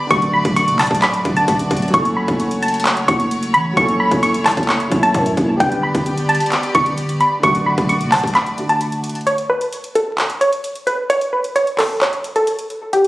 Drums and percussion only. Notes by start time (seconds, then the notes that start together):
0.11 kick, closed hi-hat
0.22 closed hi-hat
0.45 kick, closed hi-hat
0.56 closed hi-hat
0.68 closed hi-hat
0.79 clap, closed hi-hat, open hi-hat
0.87 kick, closed hi-hat
0.95 closed hi-hat
1.02 clap, closed hi-hat
1.14 closed hi-hat
1.25 kick, closed hi-hat
1.37 closed hi-hat
1.48 kick, closed hi-hat
1.59 closed hi-hat
1.71 kick, closed hi-hat
1.77 closed hi-hat
1.82 closed hi-hat
1.88 closed hi-hat
1.94 kick, closed hi-hat
2.05 closed hi-hat
2.28 kick, closed hi-hat
2.40 closed hi-hat
2.51 closed hi-hat
2.62 closed hi-hat
2.68 closed hi-hat
2.74 closed hi-hat
2.80 closed hi-hat
2.85 clap, closed hi-hat
2.97 closed hi-hat
3.08 kick, closed hi-hat
3.20 closed hi-hat
3.31 closed hi-hat
3.43 closed hi-hat
3.54 closed hi-hat
3.77 kick, closed hi-hat
3.89 closed hi-hat
4.11 kick, closed hi-hat
4.23 closed hi-hat
4.34 closed hi-hat
4.46 clap, closed hi-hat, open hi-hat
4.51 closed hi-hat
4.57 kick, closed hi-hat
4.63 closed hi-hat
4.69 clap, closed hi-hat
4.80 closed hi-hat
4.92 kick, closed hi-hat
5.03 closed hi-hat
5.14 kick, closed hi-hat
5.26 closed hi-hat
5.37 kick, closed hi-hat
5.60 kick, closed hi-hat
5.72 closed hi-hat
5.95 kick, closed hi-hat
6.06 closed hi-hat
6.17 closed hi-hat
6.29 closed hi-hat
6.35 closed hi-hat
6.40 closed hi-hat
6.46 closed hi-hat
6.52 clap, closed hi-hat
6.63 closed hi-hat
6.75 kick, closed hi-hat
6.86 closed hi-hat
6.98 closed hi-hat
7.09 closed hi-hat
7.20 closed hi-hat
7.43 kick, closed hi-hat
7.55 closed hi-hat
7.78 kick, closed hi-hat
7.89 closed hi-hat
8.01 closed hi-hat
8.12 clap, closed hi-hat, open hi-hat
8.20 kick, closed hi-hat
8.27 closed hi-hat
8.35 clap, closed hi-hat
8.46 closed hi-hat
8.58 closed hi-hat
8.69 closed hi-hat
8.81 closed hi-hat
8.92 closed hi-hat
9.04 closed hi-hat
9.09 closed hi-hat
9.15 closed hi-hat
9.21 closed hi-hat
9.27 closed hi-hat
9.38 closed hi-hat
9.61 closed hi-hat
9.72 closed hi-hat
9.84 closed hi-hat
9.95 closed hi-hat
10.18 clap, closed hi-hat
10.30 closed hi-hat
10.41 closed hi-hat
10.53 closed hi-hat
10.64 closed hi-hat
10.76 closed hi-hat
10.87 closed hi-hat
11.10 closed hi-hat
11.21 closed hi-hat
11.44 closed hi-hat
11.56 closed hi-hat
11.67 closed hi-hat
11.79 clap, open hi-hat
12.01 clap, closed hi-hat
12.13 closed hi-hat
12.24 closed hi-hat
12.36 closed hi-hat
12.47 closed hi-hat
12.59 closed hi-hat
12.70 closed hi-hat
12.93 closed hi-hat
13.04 closed hi-hat